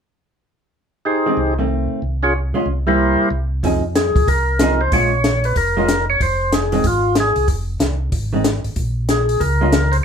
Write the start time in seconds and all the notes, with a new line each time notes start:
1.05 D#4 G4 G#4 C5
1.26 D#3 G#3 C4
1.37 C2
1.58 D#3 A3 C4
2.02 C2
2.23 C#4 F4 G#4 C#5
2.54 G#3 C#4 F4
2.66 C2
2.87 G3 A#3 E4 G4 A#4 C5
3.31 C2
3.63 F2 F3 C4 D#4 G#4, kick, open hi-hat
3.95 G#4, snare, closed hi-hat
4.15 E2, kick, open hi-hat
4.27 C2 A#4, kick, open hi-hat
4.59 F3 C4 D#4 G#4, snare, closed hi-hat
4.81 C5
4.92 A#1 G#3 C#4 F4 C#5, kick, open hi-hat
5.24 snare, closed hi-hat
5.44 B4, open hi-hat
5.55 F1 A#4, kick, open hi-hat
5.77 G#3 C#4 F4
5.89 snare, closed hi-hat
6.10 C#5
6.20 F1 C5, kick, open hi-hat
6.52 G#4, snare, closed hi-hat
6.72 D#3 G#3 C4, open hi-hat
6.84 G#1 F4, kick, open hi-hat
7.15 snare, closed hi-hat
7.20 G#4
7.36 C2, open hi-hat
7.48 F1, kick, open hi-hat
7.80 C2, snare, closed hi-hat
8.12 G#1, kick, open hi-hat
8.33 D#3 G#3 C4
8.44 snare, closed hi-hat
8.64 G#1, open hi-hat
8.76 A#1, kick, open hi-hat
9.09 G#4, snare, closed hi-hat
9.29 open hi-hat
9.40 C#2 A#4, kick, open hi-hat
9.61 G#3 C#4 F4
9.72 snare, closed hi-hat
9.92 C5, open hi-hat